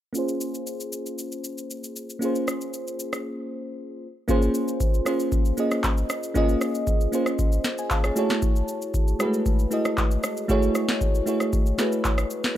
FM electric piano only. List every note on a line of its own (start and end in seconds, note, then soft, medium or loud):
0.13 2.17 A#3 medium
0.13 2.17 C#4 medium
0.13 2.18 F4 medium
0.17 2.19 G#4 medium
0.17 2.20 C5 medium
2.19 3.98 A#3 medium
2.19 3.99 C#4 medium
2.19 3.99 F4 medium
2.24 4.00 G#4 medium
2.24 4.01 C5 medium
4.28 4.91 A#3 loud
4.28 4.91 C#4 loud
4.28 4.91 F4 loud
4.28 4.92 G#4 loud
4.28 4.92 C5 loud
5.05 5.48 A#3 medium
5.05 5.48 C#4 medium
5.05 5.48 F4 medium
5.05 5.49 G#4 medium
5.05 5.49 C5 medium
5.57 6.20 A#3 medium
5.57 6.20 C#4 medium
5.57 6.21 F4 medium
5.57 6.21 G#4 medium
5.57 6.21 D#5 medium
6.34 6.97 A#3 loud
6.34 6.98 C#4 loud
6.34 6.98 F4 loud
6.34 6.99 G#4 loud
6.34 6.99 D#5 loud
7.12 7.54 A#3 medium
7.12 7.55 C#4 medium
7.12 7.55 F4 medium
7.12 7.55 G#4 medium
7.12 7.56 C5 medium
7.79 7.91 D#5 medium
7.79 7.90 G#5 medium
7.91 8.04 C5 medium
7.91 8.04 F5 medium
7.91 8.39 A5 medium
8.05 8.17 G#4 medium
8.05 8.17 C#5 medium
8.16 8.99 A3 medium
8.16 8.99 E4 medium
8.16 9.00 F#4 medium
8.16 9.00 G#4 medium
8.16 9.01 C#5 loud
9.19 9.26 G#3 medium
9.19 9.62 E4 medium
9.19 9.62 F#4 medium
9.19 9.62 G#4 medium
9.19 9.63 B4 medium
9.25 9.64 A3 medium
9.71 10.34 A3 medium
9.71 10.34 E4 medium
9.71 10.34 F#4 medium
9.71 10.35 G#4 medium
9.71 10.35 D#5 medium
10.48 11.11 A3 loud
10.48 11.12 E4 loud
10.48 11.12 F#4 loud
10.48 11.12 G#4 loud
10.48 11.13 C#5 loud
11.26 11.68 A3 medium
11.26 11.69 E4 medium
11.26 11.69 F#4 medium
11.26 11.69 G#4 medium
11.26 11.70 C#5 medium
11.78 12.41 A3 medium
11.78 12.41 E4 medium
11.78 12.41 F#4 medium
11.78 12.42 G#4 medium
11.78 12.42 B4 medium
12.05 12.53 C#5 medium